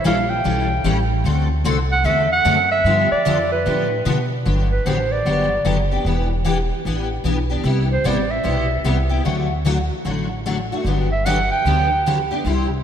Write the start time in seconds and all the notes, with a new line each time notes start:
0.04 A#1 E3 G3 C#4 E4 A4 F5
0.30 G5
0.44 B1 E3 G3 C#4 E4 A4
0.84 A1 E3 G3 C#4 E4 A4
1.24 D2 D3 A3 C4 F#4 A4
1.64 C2 D3 A3 C4 F#4 A4
1.92 F#5
2.04 E2 D3 A3 C4 F#4 A4 E5
2.32 F#5
2.45 F#2 D3 A3 C4 F#4 A4
2.72 E5
2.84 G2 D3 F3 B3 D4 G4
3.11 D5, muted upright bass stroke
3.25 F2 D3 F3 B3 D4 G4
3.52 B4
3.66 A2 D3 F3 B3 D4 G4
4.05 B2 D3 F3 B3 D4 G4
4.45 G1 D3 F#3 B3 D4 G4
4.72 B4
4.86 A1 D3 F#3 B3 D4 G4 C5
5.12 D5
5.25 G1 D3 F#3 B3 D4 G4
5.65 F#1 D3 F#3 B3 D4 G4
5.91 B3 D4 G4
6.05 E1 E3 B3 D4 G4
6.45 E3 B3 D4 G4
6.85 A1 E3 B3 D4 G4
7.24 B1 E3 B3 D4 G4
7.50 B3 D4 G4
7.64 C2 C3 G3 B3 E4 G4
7.92 C5
8.04 A1 C3 G3 B3 E4 G4 D5
8.31 E5
8.43 B1 C3 G3 B3 E4 G4
8.84 C2 C3 G3 B3 E4 G4
9.09 B3 E4 G4
9.25 D2 D3 F#3 A3 D4 F#4
9.65 D3 F#3 A3 D4 F#4
10.05 A1 D3 F#3 A3 D4 F#4
10.46 D3 F#3 A3 D4 F#4
10.72 A3 D4 F#4
10.84 G1 D3 F#3 B3 D4 G4
11.12 E5
11.26 D3 F#3 B3 D4 G4 F#5
11.51 G5
11.65 D2 D3 F#3 B3 D4 G4
12.06 D3 F#3 B3 D4 G4
12.31 B3 D4 G4
12.45 C2 C3 G3 C4 E4 G4